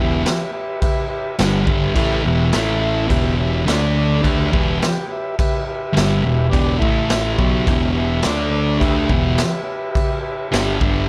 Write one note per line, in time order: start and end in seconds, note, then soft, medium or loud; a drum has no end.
0.00 0.24 E1 medium
0.00 0.24 E2 medium
0.00 0.25 B2 medium
0.00 0.25 E3 loud
0.00 0.23 G4 loud
0.00 0.23 B4 medium
0.00 0.23 E5 loud
0.24 0.51 G4 medium
0.24 0.51 B4 medium
0.24 0.52 E5 loud
0.24 snare loud
0.24 crash medium
0.53 0.79 G4 medium
0.53 0.80 B4 medium
0.53 0.80 E5 medium
0.80 1.07 G4 loud
0.80 1.08 B4 loud
0.80 1.09 E5 loud
0.80 kick loud
0.80 crash medium
1.08 1.36 G4 medium
1.08 1.36 B4 medium
1.08 1.37 E5 medium
1.39 1.67 G1 medium
1.39 1.64 G2 medium
1.39 1.65 D3 loud
1.39 1.66 G3 loud
1.39 1.66 G4 medium
1.39 1.67 B4 medium
1.39 snare loud
1.39 crash medium
1.43 1.67 F#5 loud
1.66 1.94 G1 loud
1.66 1.94 G2 medium
1.66 1.95 D3 medium
1.66 1.95 G3 medium
1.66 1.94 G4 medium
1.66 1.94 B4 medium
1.66 kick loud
1.70 1.95 E5 medium
1.96 2.23 A1 medium
1.96 2.24 A2 medium
1.96 2.24 E3 loud
1.96 2.24 A3 loud
1.96 2.23 G4 loud
1.96 2.22 B4 loud
1.96 2.23 E5 loud
1.96 kick loud
1.96 crash medium
2.24 2.52 E1 medium
2.24 2.52 E2 medium
2.24 2.52 B2 loud
2.24 2.52 E3 medium
2.24 2.51 G4 medium
2.24 2.52 B4 medium
2.24 2.52 E5 loud
2.52 3.07 A1 loud
2.52 3.07 A2 medium
2.52 3.08 E3 medium
2.52 3.10 A3 loud
2.52 2.79 E4 medium
2.52 2.79 A4 medium
2.52 2.80 E5 medium
2.52 snare loud
2.52 crash medium
2.80 3.07 E4 medium
2.80 3.07 A4 medium
2.80 3.07 E5 loud
3.07 3.64 E1 loud
3.07 3.65 E2 medium
3.07 3.65 B2 medium
3.07 3.66 E3 loud
3.07 3.35 G4 loud
3.07 3.35 B4 medium
3.07 3.36 E5 loud
3.07 kick loud
3.11 crash medium
3.39 3.65 G4 medium
3.39 3.65 B4 medium
3.39 3.65 E5 medium
3.65 4.21 D2 medium
3.65 4.20 D3 medium
3.65 4.21 A3 loud
3.65 4.22 D4 medium
3.65 3.93 D4 medium
3.65 3.93 A4 medium
3.65 3.94 D5 medium
3.65 snare loud
3.65 crash medium
3.95 4.21 D4 medium
3.95 4.22 A4 medium
3.95 4.23 D5 medium
4.20 4.50 D3 loud
4.20 4.51 A3 loud
4.20 4.51 D4 loud
4.20 4.48 G4 loud
4.20 4.49 B4 medium
4.20 4.50 E5 loud
4.20 kick loud
4.25 4.51 D2 medium
4.25 crash medium
4.51 4.80 E1 medium
4.51 4.79 E2 medium
4.51 4.79 B2 medium
4.51 4.80 E3 medium
4.51 4.78 G4 medium
4.51 4.78 B4 medium
4.51 4.78 E5 medium
4.51 kick loud
4.79 5.06 G4 medium
4.79 5.07 B4 medium
4.79 5.07 G5 medium
4.79 snare loud
4.79 crash medium
5.09 5.35 G4 medium
5.09 5.35 B4 medium
5.09 5.37 E5 medium
5.39 5.64 G4 loud
5.39 5.65 B4 medium
5.39 5.65 E5 loud
5.39 kick loud
5.39 crash medium
5.67 5.93 G4 medium
5.67 5.94 B4 medium
5.67 5.94 E5 medium
5.93 6.22 G2 medium
5.93 6.22 D3 loud
5.93 6.23 G3 loud
5.93 6.20 G4 medium
5.93 6.21 B4 medium
5.93 6.21 E5 loud
5.93 crash medium
5.97 6.23 G1 medium
5.97 snare loud
6.21 6.46 E2 medium
6.21 6.46 B2 medium
6.21 6.47 G4 medium
6.21 6.47 B4 medium
6.21 6.49 E5 loud
6.26 6.52 E1 medium
6.48 6.80 E2 loud
6.48 6.76 G4 loud
6.48 6.76 B4 loud
6.48 6.77 D5 loud
6.52 6.80 E1 medium
6.52 6.80 B2 loud
6.52 6.79 E3 loud
6.52 kick loud
6.52 crash medium
6.78 7.37 A2 medium
6.78 7.37 E3 medium
6.78 7.32 E4 medium
6.78 7.32 A4 medium
6.78 7.32 E5 loud
6.78 kick loud
6.82 7.35 A1 medium
6.82 7.38 A3 medium
7.10 snare loud
7.10 crash medium
7.35 7.65 B1 loud
7.35 7.66 B2 medium
7.35 7.66 F#3 medium
7.35 7.88 G4 medium
7.35 7.89 B4 medium
7.35 7.90 E5 medium
7.35 kick loud
7.39 7.66 B3 medium
7.67 8.20 E1 loud
7.67 8.24 E2 loud
7.67 8.24 B2 medium
7.67 8.24 E3 loud
7.67 kick loud
7.67 crash medium
7.94 8.21 G4 medium
7.94 8.22 B4 medium
7.98 8.22 E5 medium
8.23 8.78 D2 medium
8.23 8.81 D3 medium
8.23 8.81 A3 loud
8.23 8.48 D4 medium
8.23 8.82 D4 loud
8.23 8.49 A4 medium
8.23 8.49 D5 medium
8.23 snare loud
8.23 crash medium
8.49 8.77 D4 medium
8.49 8.78 A4 medium
8.49 8.78 D5 medium
8.78 9.08 D2 medium
8.78 9.04 G4 loud
8.78 9.05 B4 loud
8.78 9.05 E5 loud
8.78 kick loud
8.82 9.10 D3 loud
8.82 9.10 A3 loud
8.82 9.10 D4 loud
8.82 crash medium
9.05 9.32 G4 medium
9.05 9.33 B4 medium
9.05 9.34 E5 medium
9.09 9.37 E1 medium
9.09 9.38 E2 medium
9.09 9.38 B2 loud
9.09 9.38 E3 loud
9.09 kick loud
9.33 9.62 G4 medium
9.33 9.62 B4 medium
9.33 9.62 E5 loud
9.38 snare loud
9.38 crash medium
9.63 9.90 G4 medium
9.63 9.91 B4 medium
9.63 9.91 E5 medium
9.91 10.19 G4 loud
9.91 10.20 B4 medium
9.91 10.20 E5 loud
9.95 kick loud
9.95 crash medium
10.21 10.48 G4 medium
10.21 10.48 B4 medium
10.21 10.49 E5 medium
10.49 10.79 G2 medium
10.49 10.79 D3 loud
10.49 10.80 G3 loud
10.49 10.77 G4 medium
10.49 10.77 B4 medium
10.49 10.78 E5 medium
10.53 10.80 G1 medium
10.53 snare loud
10.53 crash medium
10.80 11.08 G1 loud
10.80 11.08 G2 medium
10.80 11.08 D3 medium
10.80 11.09 G3 loud
10.80 11.06 G4 medium
10.80 11.06 B4 medium
10.80 11.07 E5 medium
10.80 kick loud